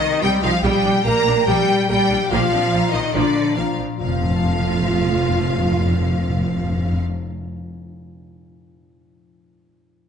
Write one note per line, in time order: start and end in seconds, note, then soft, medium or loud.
0.00 0.66 C3 loud
0.00 0.21 D#3 loud
0.00 2.33 G3 medium
0.00 0.65 C4 medium
0.00 0.21 D#4 loud
0.00 0.65 D#4 medium
0.00 0.66 C5 medium
0.00 0.11 D#5 medium
0.00 0.21 D#5 loud
0.00 0.21 G5 medium
0.00 0.32 C6 medium
0.12 0.52 D#5 medium
0.21 0.30 C2 medium
0.21 0.30 G3 loud
0.21 0.43 G3 loud
0.21 0.30 C4 medium
0.21 0.43 G4 loud
0.21 0.42 G5 loud
0.21 0.30 G5 loud
0.33 0.66 C6 loud
0.42 0.50 C2 loud
0.42 0.63 F3 loud
0.42 0.51 C4 medium
0.42 0.51 D#4 loud
0.42 0.53 F4 loud
0.42 0.63 F5 loud
0.42 0.64 F5 loud
0.42 1.06 G5 medium
0.54 0.66 D#5 loud
0.63 0.71 A#1 loud
0.63 1.47 A#2 loud
0.63 0.83 G3 loud
0.63 1.05 G3 loud
0.63 1.05 G4 loud
0.63 1.06 G5 loud
0.63 1.05 G5 loud
0.75 1.57 D4 medium
0.84 0.92 A#1 medium
0.84 0.93 D4 loud
0.84 1.36 D5 medium
0.96 1.78 G4 loud
1.05 1.13 A#1 loud
1.05 1.14 A#3 loud
1.05 1.47 A#3 loud
1.05 1.46 A#4 loud
1.05 1.27 G5 loud
1.05 1.47 A#5 loud
1.17 1.99 D6 loud
1.26 1.34 A#1 medium
1.26 1.35 D4 loud
1.26 1.89 G5 loud
1.38 1.67 D5 medium
1.47 1.55 A#1 loud
1.47 2.31 A#2 loud
1.47 1.67 G3 loud
1.47 1.88 G3 loud
1.47 1.88 G4 loud
1.47 1.88 G5 loud
1.59 2.42 D4 medium
1.68 2.21 D5 medium
1.79 2.33 G4 loud
1.89 1.97 A#1 medium
1.89 2.31 G3 loud
1.89 1.97 A#3 loud
1.89 2.30 G4 loud
1.89 2.30 G5 loud
1.89 2.11 G5 loud
1.89 2.31 G5 loud
2.01 4.02 D6 medium
2.10 2.18 A#1 medium
2.10 2.18 D4 medium
2.10 2.34 G5 medium
2.22 2.63 D5 loud
2.30 2.39 A#1 loud
2.30 4.03 A#2 loud
2.30 2.51 F3 loud
2.30 2.93 F3 loud
2.30 2.51 A#3 loud
2.30 2.93 F4 loud
2.30 2.94 F5 loud
2.30 2.93 F5 loud
2.43 3.24 D4 medium
2.53 2.61 A#1 medium
2.53 2.61 C4 medium
2.53 2.61 D4 medium
2.53 3.34 C5 medium
2.64 3.03 D5 medium
2.73 2.81 A#1 medium
2.73 2.81 A#3 medium
2.73 2.81 C4 medium
2.73 2.94 A#5 medium
2.84 3.67 C6 medium
2.93 3.01 A#1 medium
2.93 3.15 D#3 loud
2.93 3.02 C4 medium
2.93 3.02 D4 medium
2.93 3.14 D#4 loud
2.93 3.15 D#5 loud
2.93 3.56 A#5 medium
3.04 3.45 D5 medium
3.14 3.22 A#1 loud
3.14 3.57 D3 loud
3.14 3.34 F3 medium
3.14 4.07 F3 medium
3.14 3.34 A#3 loud
3.14 3.57 D4 loud
3.14 3.57 D5 loud
3.14 3.58 D5 loud
3.35 4.28 C5 medium
3.56 3.64 A#1 medium
3.56 3.79 F3 medium
3.56 3.64 A#3 medium
3.56 3.64 C4 medium
3.56 3.79 F4 loud
3.56 3.79 F5 medium
3.56 3.66 F5 medium
3.56 3.79 A#5 medium
3.69 7.40 C6 medium
3.78 3.86 A#1 medium
3.78 3.86 C4 medium
3.78 3.86 D4 medium
3.78 4.03 A#5 medium
3.90 4.02 D5 medium
3.99 6.99 F1 medium
3.99 4.07 F2 loud
3.99 7.91 F2 medium
3.99 6.99 F3 medium
3.99 6.98 A3 loud
3.99 6.98 F4 loud
3.99 6.99 F5 loud
3.99 7.01 F5 loud
4.08 4.15 F2 medium
4.08 7.91 F3 medium
4.15 4.23 F2 medium
4.15 7.15 C4 medium
4.22 4.30 F2 loud
4.22 7.21 A4 medium
4.29 4.37 F2 loud
4.29 7.28 C5 medium
4.36 4.44 F2 medium
4.36 7.35 A5 medium
4.45 4.52 F2 loud
4.52 4.59 F2 medium
4.59 4.66 F2 medium
4.66 4.73 F2 medium
4.74 4.80 F2 medium
4.80 4.87 F2 medium
4.87 4.94 F2 loud
4.94 5.01 F2 medium
5.01 5.08 F2 loud
5.08 5.15 F2 medium
5.15 5.22 F2 loud
5.22 5.29 F2 medium
5.30 5.37 F2 loud
5.37 5.44 F2 medium
5.44 5.51 F2 loud
5.51 5.58 F2 loud
5.58 5.65 F2 loud
5.65 5.72 F2 medium
5.72 5.79 F2 loud
5.80 5.87 F2 medium
5.87 5.94 F2 medium
5.94 6.00 F2 loud
6.00 6.07 F2 loud
6.07 6.15 F2 loud
6.15 6.22 F2 loud
6.22 6.29 F2 medium
6.29 6.36 F2 loud
6.36 6.43 F2 medium
6.43 6.50 F2 loud
6.50 6.57 F2 medium
6.57 6.64 F2 loud
6.64 6.71 F2 medium
6.71 6.78 F2 medium
6.78 6.85 F2 medium
6.85 6.92 F2 loud
6.92 6.99 F2 loud